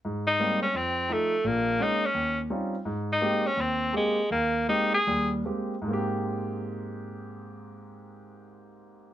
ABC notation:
X:1
M:4/4
L:1/8
Q:"Swing" 1/4=161
K:Ab
V:1 name="Tenor saxophone"
z E2 D C2 =A,2 | B,2 E D2 z3 | z E2 D C2 A,2 | B,2 E A2 z3 |
z8 | z8 |]
V:2 name="Grand piano"
A,,2 [G,A,B,C] z F,,2 [F,=A,E] z | [B,,,B,,]2 [A,B,D] z E,,2 [G,CDEF] z | A,,2 [A,B,CG] z E,,2 [A,B,CG] z | E,,2 [A,B,CG] z [E,,G,]2 [A,B,CG] z |
[A,,A,B,CG]8- | [A,,A,B,CG]8 |]